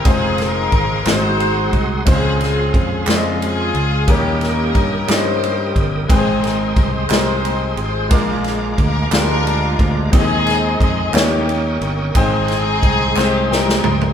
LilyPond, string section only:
\new Staff \with { instrumentName = "String section" } { \time 6/8 \key aes \major \tempo 4. = 60 << { aes'8 bes'4 c''4 r8 | aes'8 aes'8 aes'8 f'8 aes'4 | g'8 bes'4 c''4 r8 | aes'8 bes'8 c''4. c''8~ |
c''8 r8 bes'8 bes'4 r8 | aes'4 aes'8 g'4 r8 | aes'4. g'8 bes'4 | } \\ { <c' ees'>8 ees'4 <ees' ges'>4. | <c' f'>4. r8 <c' f'>4 | <bes des'>8 <des' g'>4 g'4. | <c' ees'>4 <ees' g'>4. <f' aes'>8~ |
<f' aes'>4 r8 <d' f'>4. | <c' ees'>4. <bes des'>4. | <c' ees'>2 <ees' g'>4 | } >> }